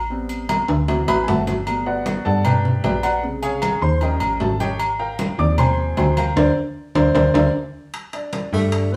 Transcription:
Already playing: A1
0.10 G3 B3 C4, high conga
0.29 high conga, low agogo
0.49 high conga, low timbale, low agogo
0.68 D2, high timbale
0.88 E3 F#3 C4, high conga, low timbale, low agogo
1.08 A1 B4 B5, high conga, low timbale, low agogo
1.24 G#5
1.28 G1 A4 E5 F#5 A5, high conga, low timbale
1.47 high conga, low timbale, low agogo
1.67 G3 A3 B3, high conga, low agogo
1.86 F#4 B4 D5 F#5, high conga
2.06 high conga, low timbale, low agogo
2.25 G2 A4 D5 F#5 A5, high conga
2.45 G4 B4 D5 G5, high conga, low conga, low agogo
2.65 high conga, low conga
2.84 A#1 G4 B4 D5 G5, high conga, low timbale, low agogo
3.03 F#4 B4 D5 F#5, low agogo
3.23 C3 C#3 G#3, high conga
3.42 G#4 C#5 F5 G#5, high conga, low agogo
3.62 high conga, low timbale, low agogo
3.81 D#2 C5 C6, high conga
4.01 F3 G3 C#4 A#4 D#5 G5 A#5, high conga, low agogo
4.20 A1, high conga, low agogo
4.40 G#1 A4 A5, high conga, low timbale
4.60 G4 C#5 D#5 G5, high conga, low agogo
4.80 high conga, low agogo
4.99 A#4 F5 G5 A#5, high conga
5.19 high conga, low timbale, low agogo
5.38 D#2 F3 G3 A#3 C4 D5 D6, high conga
5.58 C5 G5 G#5 C6, high conga, low conga, low agogo
5.78 high conga
5.97 D2 C5 G5 G#5 C6, high conga, low timbale, low agogo
6.17 A#4 F5 G5 A#5, high conga, low agogo
6.36 D2 A#4 C5 D5, high conga, high timbale
6.95 D2 A#4 C5 D5, high conga, high timbale
7.14 D2 A#4 C5 D5, high conga, high timbale
7.34 D2 A#4 C5 D5, high conga, high timbale
7.94 high conga, high timbale
8.13 D4 D5, high conga, high timbale
8.33 high conga, high timbale
8.52 G2 D3 G3 A3 G4, high conga
8.72 high conga, high timbale
8.92 E3 B3 B4, high conga

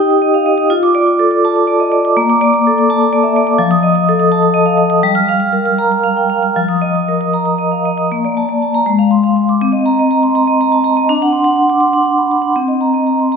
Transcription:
Already playing: D#4 G4 D#5 D#6
0.00 G5
0.10 D#6
0.22 D#5
0.34 F5
0.46 D#5
0.58 D#6
0.70 F4
0.83 D6
0.95 D5
1.07 D6
1.19 A4
1.31 D6
1.45 A5
1.56 D6
1.67 D5
1.80 D#5
1.92 D5
2.05 D6
2.17 A#3
2.30 D6
2.41 D5
2.54 D6
2.67 A4
2.78 D6
2.90 A5
3.01 D6
3.13 D5
3.23 E5
3.36 D5
3.47 D6
3.58 F3
3.71 D#6
3.83 D#5
3.95 D#6
4.09 A4
4.20 D#6
4.32 A5
4.42 D#6
4.54 D#5
4.66 F5
4.78 D#5
4.90 D#6
5.03 G3
5.15 F6
5.28 F5
5.40 F6
5.53 A#4
5.66 F6
5.78 A#5
5.92 F6
6.04 F5
6.17 G5
6.30 F5
6.43 F6
6.56 F3
6.69 D#6
6.82 D#5
6.95 D#6
7.08 A#4
7.21 D#6
7.34 A#5
7.46 D#6
7.58 D#5
7.72 F5
7.85 D#5
7.98 D#6
8.12 A#3
8.25 D5
8.37 A5
8.49 D5
8.62 A5
8.74 A#5
8.86 G#3
8.99 F5
9.11 C6
9.24 F5
9.36 C6
9.49 D6
9.61 C4
9.72 D#5
9.86 A#5
9.99 D#5
10.11 A#5
10.23 C6
10.35 A#5
10.47 D#5
10.61 A#5
10.72 A5
10.84 A#5
10.97 D#5
11.09 D4
11.22 F#5
11.32 C6
11.44 F#5
11.56 C6
11.70 D6
11.81 C6
11.93 F#5
12.06 C6
12.18 B5
12.31 C6
12.42 F#5
12.56 C4
12.68 D#5
12.81 A#5
12.94 D#5
13.07 A#5
13.19 C6
13.32 A#5

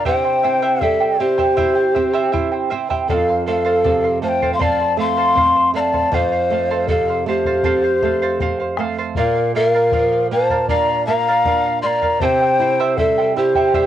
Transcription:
0.05 C3 E4 G4 C5 E5 G5, bombo low
0.24 E4 C5 G5
0.43 C4 E4 C5 E5 G5
0.62 E4 G4 C5 E5 G5
0.81 G3 E4 A4 C5 E5 G5, bombo low
1.00 E4 C5 G5
1.19 C4 E4 G4 C5 E5 G5
1.38 E4 G4 C5 E5 G5, bombo low
1.57 E4 G4 C5 E5 G5, bombo low
1.75 E4 C5 G5
1.94 C4 E4 C5 E5 G5, bombo low
2.13 E4 G4 C5 E5 G5
2.32 E4 C5 E5 G5, bombo low
2.52 E4 C5 G5
2.70 C4 E4 C5 E5 G5
2.90 E4 G4 C5 E5 G5, bombo low
3.08 F2 A4 C5 F5 G5, bombo low
3.14 F5
3.29 C5 F5
3.46 A3 A4 C5 F5
3.65 A4 C5 F5
3.84 C3 A4 C5 F5, bombo low
4.04 C5 F5
4.22 A3 A4 C5 F5 A5
4.28 G5
4.42 A4 C5 F5, bombo low
4.53 F5 C6
4.59 C4 A4 C5 D5 F5 A5, bombo low
4.80 C5 F5
4.97 A3 A4 C5 F5 C6
5.17 A4 C5 F5
5.35 C4 A4 C5 F5, bombo low
5.55 C5 F5
5.74 A3 A4 C5 D5 F5 A#5
5.80 A5
5.93 A4 C5 F5, bombo low
6.12 F2 A4 C5 F5, bombo low
6.32 C5 F5
6.50 A3 A4 C5 F5
6.70 A4 C5 F5
6.88 C3 A4 C5 F5, bombo low
7.08 C5 F5
7.26 A3 G4 A4 C5 F5
7.45 A4 C5 F5, bombo low
7.63 C4 A4 C5 F5, bombo low
7.84 C5 F5
8.02 A3 A4 C5 F5, bombo low
8.22 A4 C5 F5
8.40 C4 A4 C5 F5, bombo low
8.60 C5 F5
8.77 A3 A4 C5 F5, bombo rim
8.99 A4 C5 F5
9.15 A#2 A#4 D5 F5, bombo low
9.35 D5 F5
9.55 A#3 A#4 D5 E5 F5
9.69 F5
9.74 A#4 D5 F5
9.92 F3 A#4 D5 F5, bombo low
10.12 D5 F5
10.31 A#3 A#4 C5 D5 F5 A5
10.49 A#4 D5 F5, bombo low
10.68 D4 A#4 D5 F5 A#5, bombo low
10.89 D5 F5
11.06 A#3 A#4 D5 F5 A#5
11.28 A#4 D5 F5
11.45 D4 A#4 D5 F5, bombo low
11.66 D5 F5
11.82 A#3 A#4 D5 F5 C6
11.86 A#5
12.02 A#4 D5 F5, bombo low
12.20 C3 E4 G4 C5 E5 G5 A5, bombo low
12.25 G5
12.41 E4 C5 G5
12.59 E4 C5 E5 G5
12.79 E4 G4 C5 E5 G5
12.97 G3 E4 A4 C5 E5 G5, bombo low
13.18 E4 C5 G5
13.36 E4 G4 C5 E5 G5
13.54 E4 G4 C5 E5 G5, bombo low
13.74 G3 E4 G4 C5 E5 G5, bombo low

